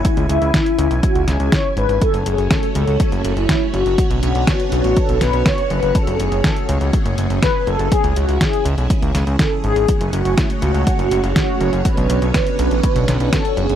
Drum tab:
HH |xxxxxxxxxxxxx-xx|xxxxxxxxxxxxx-xx|xxxxxxxxxxxxxxxx|xxxxxxxxxxxxx-xx|
SD |----o-----o-o---|----o-------o---|----o-----o-o---|----o-------o---|
BD |o---o---o---o---|o---o---o---o---|o---o---o---o---|o---o---o---o---|

HH |xxxxxxxxxxxxx-xx|xxxxxxxxxxxxx-xx|xxxxxxxxxxxxxxxx|
SD |----o-----o-o---|----o-------o---|----o-----o-o---|
BD |o---o---o---o---|o---o---o---o---|o---o---o---o---|